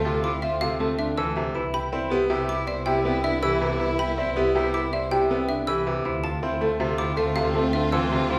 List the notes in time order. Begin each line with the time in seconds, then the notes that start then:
Already playing: D2 A3 C4 F4 A4
0.04 C3 F4 C5
0.23 E4 F4 D6
0.42 F4 C5 E5
0.61 C3 F4 A4 F5
0.80 A3 C4 F4 A5
0.99 D4 F4 E5
1.18 E3 F4 A4 E6
1.36 C3 C5
1.55 C2 B3 E4 B4
1.74 E4 G4 B5
1.92 C4 E4 D5
2.10 B3 E4 G4
2.30 C3 E4 G4
2.49 E4 D6
2.67 E4 C5 D5 E5
2.86 C3 E4 G4 G5
3.04 B3 C4 E4 G5
3.23 D4 E4 E5
3.42 E3 E4 G4 B4 E6
3.61 C3 E4 B4
3.80 E4 B4
3.99 E4 G4 B5
4.18 C4 E4 D5
4.36 B3 E4 G4
4.55 C3 E4 G4 B4
4.73 E4 D6
4.93 E4 C5 D5 E5
5.11 C3 E4 G4 G5
5.30 B3 C4 E4 G5
5.49 D4 E4 E5
5.67 E3 E4 G4 B4 E6
5.87 C3 B4
6.05 D2 C4 E4 F4 C5
6.24 F4 A5
6.43 C4 E4 F4 E5
6.61 A3 F4 A4
6.80 C3 F4 C5
6.98 E4 F4 D6
7.17 A3 F4 C5 E5
7.36 C3 F4 A4 F5
7.54 A3 C4 F4 A5
7.73 D4 F4 E5
7.92 E3 F4 A4 E6
8.11 C3 F4 C5
8.30 E4 F4 C5